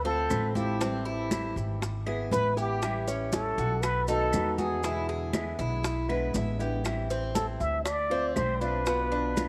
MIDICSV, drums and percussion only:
0, 0, Header, 1, 2, 480
1, 0, Start_track
1, 0, Key_signature, 0, "minor"
1, 0, Tempo, 503778
1, 769, Time_signature, 4, 2, 24, 8
1, 9035, End_track
2, 0, Start_track
2, 0, Title_t, "Drums"
2, 50, Note_on_c, 9, 60, 30
2, 52, Note_on_c, 9, 63, 29
2, 145, Note_off_c, 9, 60, 0
2, 147, Note_off_c, 9, 63, 0
2, 288, Note_on_c, 9, 70, 67
2, 289, Note_on_c, 9, 75, 63
2, 292, Note_on_c, 9, 60, 35
2, 292, Note_on_c, 9, 61, 78
2, 295, Note_on_c, 9, 63, 79
2, 384, Note_off_c, 9, 70, 0
2, 385, Note_off_c, 9, 75, 0
2, 388, Note_off_c, 9, 60, 0
2, 388, Note_off_c, 9, 61, 0
2, 390, Note_off_c, 9, 63, 0
2, 527, Note_on_c, 9, 63, 73
2, 533, Note_on_c, 9, 70, 29
2, 622, Note_off_c, 9, 63, 0
2, 628, Note_off_c, 9, 70, 0
2, 766, Note_on_c, 9, 63, 30
2, 772, Note_on_c, 9, 70, 71
2, 774, Note_on_c, 9, 60, 64
2, 861, Note_off_c, 9, 63, 0
2, 867, Note_off_c, 9, 70, 0
2, 870, Note_off_c, 9, 60, 0
2, 1010, Note_on_c, 9, 63, 31
2, 1013, Note_on_c, 9, 60, 34
2, 1105, Note_off_c, 9, 63, 0
2, 1109, Note_off_c, 9, 60, 0
2, 1249, Note_on_c, 9, 63, 89
2, 1249, Note_on_c, 9, 75, 65
2, 1252, Note_on_c, 9, 70, 65
2, 1256, Note_on_c, 9, 60, 63
2, 1344, Note_off_c, 9, 63, 0
2, 1344, Note_off_c, 9, 75, 0
2, 1347, Note_off_c, 9, 70, 0
2, 1351, Note_off_c, 9, 60, 0
2, 1489, Note_on_c, 9, 63, 30
2, 1497, Note_on_c, 9, 70, 28
2, 1499, Note_on_c, 9, 60, 32
2, 1584, Note_off_c, 9, 63, 0
2, 1592, Note_off_c, 9, 70, 0
2, 1594, Note_off_c, 9, 60, 0
2, 1733, Note_on_c, 9, 63, 37
2, 1737, Note_on_c, 9, 60, 62
2, 1741, Note_on_c, 9, 70, 69
2, 1829, Note_off_c, 9, 63, 0
2, 1832, Note_off_c, 9, 60, 0
2, 1837, Note_off_c, 9, 70, 0
2, 1967, Note_on_c, 9, 63, 31
2, 1967, Note_on_c, 9, 75, 64
2, 1979, Note_on_c, 9, 60, 34
2, 2062, Note_off_c, 9, 63, 0
2, 2063, Note_off_c, 9, 75, 0
2, 2075, Note_off_c, 9, 60, 0
2, 2205, Note_on_c, 9, 63, 83
2, 2218, Note_on_c, 9, 60, 33
2, 2218, Note_on_c, 9, 61, 79
2, 2219, Note_on_c, 9, 70, 63
2, 2300, Note_off_c, 9, 63, 0
2, 2314, Note_off_c, 9, 60, 0
2, 2314, Note_off_c, 9, 61, 0
2, 2315, Note_off_c, 9, 70, 0
2, 2456, Note_on_c, 9, 70, 28
2, 2551, Note_off_c, 9, 70, 0
2, 2689, Note_on_c, 9, 70, 75
2, 2690, Note_on_c, 9, 63, 31
2, 2693, Note_on_c, 9, 60, 61
2, 2693, Note_on_c, 9, 75, 68
2, 2784, Note_off_c, 9, 70, 0
2, 2785, Note_off_c, 9, 63, 0
2, 2788, Note_off_c, 9, 75, 0
2, 2789, Note_off_c, 9, 60, 0
2, 2931, Note_on_c, 9, 63, 36
2, 2932, Note_on_c, 9, 60, 33
2, 2933, Note_on_c, 9, 70, 61
2, 3026, Note_off_c, 9, 63, 0
2, 3028, Note_off_c, 9, 60, 0
2, 3029, Note_off_c, 9, 70, 0
2, 3169, Note_on_c, 9, 63, 92
2, 3169, Note_on_c, 9, 70, 69
2, 3178, Note_on_c, 9, 60, 64
2, 3264, Note_off_c, 9, 63, 0
2, 3265, Note_off_c, 9, 70, 0
2, 3273, Note_off_c, 9, 60, 0
2, 3412, Note_on_c, 9, 60, 32
2, 3414, Note_on_c, 9, 70, 27
2, 3507, Note_off_c, 9, 60, 0
2, 3509, Note_off_c, 9, 70, 0
2, 3649, Note_on_c, 9, 70, 69
2, 3649, Note_on_c, 9, 75, 69
2, 3653, Note_on_c, 9, 60, 69
2, 3653, Note_on_c, 9, 63, 35
2, 3744, Note_off_c, 9, 70, 0
2, 3745, Note_off_c, 9, 75, 0
2, 3748, Note_off_c, 9, 60, 0
2, 3748, Note_off_c, 9, 63, 0
2, 3885, Note_on_c, 9, 70, 54
2, 3889, Note_on_c, 9, 63, 31
2, 3892, Note_on_c, 9, 60, 35
2, 3981, Note_off_c, 9, 70, 0
2, 3985, Note_off_c, 9, 63, 0
2, 3987, Note_off_c, 9, 60, 0
2, 4122, Note_on_c, 9, 75, 64
2, 4127, Note_on_c, 9, 70, 67
2, 4131, Note_on_c, 9, 63, 78
2, 4134, Note_on_c, 9, 60, 31
2, 4134, Note_on_c, 9, 61, 77
2, 4217, Note_off_c, 9, 75, 0
2, 4222, Note_off_c, 9, 70, 0
2, 4227, Note_off_c, 9, 63, 0
2, 4229, Note_off_c, 9, 60, 0
2, 4229, Note_off_c, 9, 61, 0
2, 4367, Note_on_c, 9, 70, 27
2, 4368, Note_on_c, 9, 63, 72
2, 4463, Note_off_c, 9, 70, 0
2, 4464, Note_off_c, 9, 63, 0
2, 4607, Note_on_c, 9, 70, 69
2, 4611, Note_on_c, 9, 63, 33
2, 4615, Note_on_c, 9, 60, 62
2, 4702, Note_off_c, 9, 70, 0
2, 4707, Note_off_c, 9, 63, 0
2, 4710, Note_off_c, 9, 60, 0
2, 4846, Note_on_c, 9, 63, 34
2, 4851, Note_on_c, 9, 60, 32
2, 4941, Note_off_c, 9, 63, 0
2, 4947, Note_off_c, 9, 60, 0
2, 5082, Note_on_c, 9, 63, 94
2, 5083, Note_on_c, 9, 75, 71
2, 5086, Note_on_c, 9, 70, 63
2, 5093, Note_on_c, 9, 60, 59
2, 5177, Note_off_c, 9, 63, 0
2, 5178, Note_off_c, 9, 75, 0
2, 5182, Note_off_c, 9, 70, 0
2, 5188, Note_off_c, 9, 60, 0
2, 5326, Note_on_c, 9, 70, 28
2, 5329, Note_on_c, 9, 63, 30
2, 5332, Note_on_c, 9, 60, 36
2, 5421, Note_off_c, 9, 70, 0
2, 5424, Note_off_c, 9, 63, 0
2, 5427, Note_off_c, 9, 60, 0
2, 5559, Note_on_c, 9, 63, 35
2, 5567, Note_on_c, 9, 70, 61
2, 5568, Note_on_c, 9, 60, 68
2, 5655, Note_off_c, 9, 63, 0
2, 5662, Note_off_c, 9, 70, 0
2, 5664, Note_off_c, 9, 60, 0
2, 5804, Note_on_c, 9, 63, 32
2, 5806, Note_on_c, 9, 75, 65
2, 5813, Note_on_c, 9, 60, 35
2, 5899, Note_off_c, 9, 63, 0
2, 5901, Note_off_c, 9, 75, 0
2, 5908, Note_off_c, 9, 60, 0
2, 6043, Note_on_c, 9, 63, 75
2, 6045, Note_on_c, 9, 70, 64
2, 6057, Note_on_c, 9, 60, 33
2, 6057, Note_on_c, 9, 61, 74
2, 6138, Note_off_c, 9, 63, 0
2, 6140, Note_off_c, 9, 70, 0
2, 6152, Note_off_c, 9, 60, 0
2, 6152, Note_off_c, 9, 61, 0
2, 6289, Note_on_c, 9, 70, 28
2, 6384, Note_off_c, 9, 70, 0
2, 6520, Note_on_c, 9, 63, 32
2, 6524, Note_on_c, 9, 75, 66
2, 6525, Note_on_c, 9, 70, 68
2, 6533, Note_on_c, 9, 60, 59
2, 6616, Note_off_c, 9, 63, 0
2, 6619, Note_off_c, 9, 75, 0
2, 6620, Note_off_c, 9, 70, 0
2, 6628, Note_off_c, 9, 60, 0
2, 6766, Note_on_c, 9, 63, 35
2, 6768, Note_on_c, 9, 60, 33
2, 6770, Note_on_c, 9, 70, 54
2, 6861, Note_off_c, 9, 63, 0
2, 6864, Note_off_c, 9, 60, 0
2, 6865, Note_off_c, 9, 70, 0
2, 7007, Note_on_c, 9, 63, 91
2, 7007, Note_on_c, 9, 70, 67
2, 7014, Note_on_c, 9, 60, 59
2, 7102, Note_off_c, 9, 63, 0
2, 7103, Note_off_c, 9, 70, 0
2, 7109, Note_off_c, 9, 60, 0
2, 7246, Note_on_c, 9, 60, 37
2, 7247, Note_on_c, 9, 70, 27
2, 7342, Note_off_c, 9, 60, 0
2, 7342, Note_off_c, 9, 70, 0
2, 7484, Note_on_c, 9, 75, 69
2, 7485, Note_on_c, 9, 60, 68
2, 7488, Note_on_c, 9, 70, 69
2, 7489, Note_on_c, 9, 63, 32
2, 7579, Note_off_c, 9, 75, 0
2, 7580, Note_off_c, 9, 60, 0
2, 7583, Note_off_c, 9, 70, 0
2, 7585, Note_off_c, 9, 63, 0
2, 7729, Note_on_c, 9, 60, 32
2, 7732, Note_on_c, 9, 63, 33
2, 7824, Note_off_c, 9, 60, 0
2, 7827, Note_off_c, 9, 63, 0
2, 7965, Note_on_c, 9, 75, 65
2, 7969, Note_on_c, 9, 60, 33
2, 7969, Note_on_c, 9, 61, 79
2, 7970, Note_on_c, 9, 70, 60
2, 7971, Note_on_c, 9, 63, 86
2, 8061, Note_off_c, 9, 75, 0
2, 8065, Note_off_c, 9, 60, 0
2, 8065, Note_off_c, 9, 61, 0
2, 8065, Note_off_c, 9, 70, 0
2, 8066, Note_off_c, 9, 63, 0
2, 8207, Note_on_c, 9, 70, 28
2, 8302, Note_off_c, 9, 70, 0
2, 8443, Note_on_c, 9, 70, 66
2, 8450, Note_on_c, 9, 60, 67
2, 8454, Note_on_c, 9, 63, 33
2, 8538, Note_off_c, 9, 70, 0
2, 8546, Note_off_c, 9, 60, 0
2, 8550, Note_off_c, 9, 63, 0
2, 8689, Note_on_c, 9, 60, 30
2, 8693, Note_on_c, 9, 63, 35
2, 8784, Note_off_c, 9, 60, 0
2, 8788, Note_off_c, 9, 63, 0
2, 8926, Note_on_c, 9, 75, 66
2, 8928, Note_on_c, 9, 70, 63
2, 8929, Note_on_c, 9, 60, 58
2, 8932, Note_on_c, 9, 63, 93
2, 9022, Note_off_c, 9, 75, 0
2, 9023, Note_off_c, 9, 70, 0
2, 9024, Note_off_c, 9, 60, 0
2, 9027, Note_off_c, 9, 63, 0
2, 9035, End_track
0, 0, End_of_file